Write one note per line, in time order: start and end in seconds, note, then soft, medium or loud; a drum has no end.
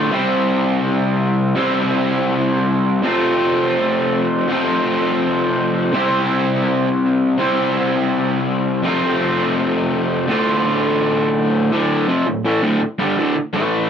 0.00 0.10 A2 medium
0.00 0.11 D3 medium
0.00 0.12 A3 medium
0.00 0.12 F4 medium
0.11 1.54 C3 loud
0.11 1.55 G3 loud
0.11 1.56 C4 medium
0.11 1.57 E4 loud
0.11 1.57 G4 loud
0.11 1.59 C5 loud
1.55 3.01 C3 medium
1.55 3.01 G3 loud
1.55 3.04 C4 loud
1.55 3.02 E4 loud
1.55 3.02 G4 loud
1.55 3.05 C5 loud
3.02 4.47 F2 medium
3.02 4.47 C3 loud
3.02 4.48 F3 loud
3.02 4.49 A3 loud
3.02 4.51 C4 loud
3.02 4.49 F4 loud
4.48 5.92 F2 loud
4.48 5.92 C3 medium
4.48 5.93 F3 loud
4.48 5.94 A3 loud
4.48 5.94 C4 loud
4.48 5.94 F4 loud
5.93 7.36 C3 loud
5.93 7.38 G3 medium
5.93 7.38 C4 loud
5.93 7.38 E4 loud
5.93 7.39 G4 loud
5.93 7.41 C5 loud
7.37 8.82 C3 medium
7.37 8.82 G3 medium
7.37 8.82 C4 loud
7.37 8.83 E4 loud
7.37 8.83 G4 medium
7.37 8.83 C5 loud
8.83 10.26 F2 loud
8.83 10.27 C3 loud
8.83 10.30 F3 medium
8.83 10.30 A3 loud
8.83 10.28 C4 loud
8.83 10.32 F4 loud
10.29 11.70 D2 loud
10.29 11.71 A2 medium
10.29 11.71 D3 loud
10.29 11.72 A3 loud
10.29 11.73 F4 loud
11.72 12.07 D2 medium
11.72 12.08 A2 loud
11.72 12.08 D3 loud
12.07 12.25 F2 loud
12.07 12.26 C3 loud
12.07 12.26 F3 loud
12.27 12.41 D2 medium
12.27 12.41 A2 medium
12.44 12.61 A2 medium
12.44 12.62 E3 loud
12.44 12.63 A3 loud
12.62 12.80 D2 loud
12.62 12.80 A2 loud
12.62 12.81 D3 loud
12.81 muted overdriven electric guitar stroke medium
12.99 13.16 G2 medium
12.99 13.17 D3 loud
12.99 13.17 G3 loud
13.17 13.34 D2 loud
13.17 13.35 A2 loud
13.17 13.35 D3 loud
13.36 muted overdriven electric guitar stroke medium
13.53 13.88 A2 loud
13.53 13.88 E3 loud
13.53 13.89 A3 loud